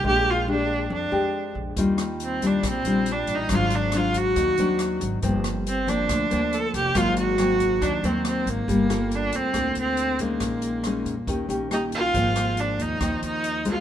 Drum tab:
HH |--------|xxxxxxxx|xxxxxxxx|xxxxxxxx|
SD |--------|-r--r---|r-r---r-|-r--r---|
BD |--------|o--oo--o|o--oo--o|o--oo--o|

HH |xxxxxxxx|xxxxxxxx|xxxxxxxx|xxxxxxxx|
SD |r-r---r-|-r--r---|r-r---r-|-r--r---|
BD |o--oo--o|o--oo--o|o--oo--o|o--oo--o|